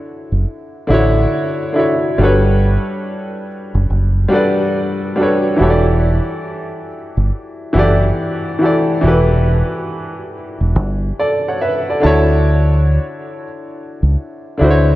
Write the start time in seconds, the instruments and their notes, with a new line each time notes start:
Already playing: upright piano D3 D4 E4 F#4 C#5
0.32 fingered electric bass F#1
0.87 fingered electric bass A1, upright piano D3 D4 E4
0.92 upright piano F#4 C#5
1.72 upright piano D3 D4 E4
1.77 upright piano F#4 C#5
2.18 fingered electric bass G1, upright piano G3 D4 F#4
2.22 upright piano A4 B4 C#5
3.75 fingered electric bass F#1
3.90 fingered electric bass F#1
4.29 upright piano G3 D4 F#4
4.33 upright piano A4 B4 D5
5.16 upright piano G3 D4 F#4
5.20 upright piano A4 B4 C#5
5.57 upright piano E3 E4 F#4
5.61 fingered electric bass E1, upright piano G4 A4 C#5
5.70 upright piano D5
7.17 fingered electric bass G1
7.73 fingered electric bass F#1, upright piano E3 E4 F#4 G4
7.78 upright piano A4 D5
8.59 upright piano E3 E4 F#4
8.63 upright piano G4 A4 D5
9.01 fingered electric bass E1, upright piano E3 E4 F#4 G4
9.06 upright piano A4 B4
10.61 fingered electric bass E1
10.76 fingered electric bass G1
11.19 upright piano A4 D5
11.48 upright piano C#5 F#5
11.61 upright piano B4 E5
11.90 upright piano A4 D5
12.00 upright piano D3 D4 E4 A5
12.04 fingered electric bass D2, upright piano F#4 C#5
14.03 fingered electric bass C#2
14.58 fingered electric bass D2, upright piano D3 D4 E4
14.63 upright piano F#4 C5
14.71 upright piano C#5